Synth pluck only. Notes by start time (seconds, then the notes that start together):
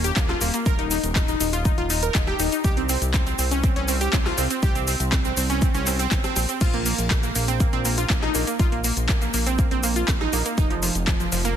0.04 G4
0.17 A#3
0.29 F4
0.41 A#3
0.54 A#3
0.66 A#4
0.79 D#4
0.91 D#4
1.16 D#4
1.28 D#4
1.41 D#4
1.53 F4
1.65 D#4
1.78 F4
1.90 D#4
2.03 A#4
2.15 D#4
2.27 G4
2.40 D#4
2.52 D#4
2.64 G4
2.77 C4
2.89 C4
3.14 C4
3.27 C4
3.39 C4
3.51 C#4
3.64 C4
3.76 C#4
3.88 C4
4.01 G4
4.13 C4
4.26 F4
4.38 C4
4.51 C4
4.63 G4
4.75 C4
4.88 C4
5.12 C4
5.25 C4
5.37 C4
5.50 C#4
5.62 C4
5.75 C#4
5.87 C4
5.99 C4
6.12 C4
6.24 C4
6.36 C4
6.49 C4
6.61 F4
6.74 A#3
6.86 A#3
7.11 A#3
7.23 A#3
7.36 A#3
7.48 C4
7.60 A#3
7.73 C4
7.85 A#3
7.98 F4
8.10 A#3
8.22 D#4
8.35 A#3
8.47 A#3
8.59 F4
8.72 A#3
8.84 A#3
9.09 A#3
9.22 A#3
9.34 A#3
9.46 C4
9.59 A#3
9.71 C4
9.83 A#3
9.96 F4
10.08 A#3
10.21 D#4
10.33 A#3
10.46 A#3
10.58 D#4
10.70 F3
10.83 F3
11.07 F3
11.20 F3
11.32 F3
11.45 A#3